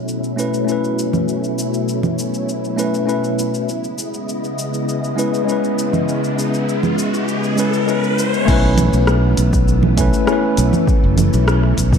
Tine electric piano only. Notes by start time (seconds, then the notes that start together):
0.36 A3 C#4 E4 B4
0.64 A3 C#4
0.69 E4 B4
2.76 A3 C#4 E4 B4
3.05 A3 C#4 E4 B4
5.16 G#3 C#4 E4 B4
5.45 G#3 C#4
5.50 E4 B4
7.56 G#3 C#4 E4 B4
7.86 G#3 C#4 E4
7.90 B4
8.45 A3 C#4
8.50 E4 B4
9.97 A3 C#4 E4 B4
10.25 A3 C#4
10.30 E4 B4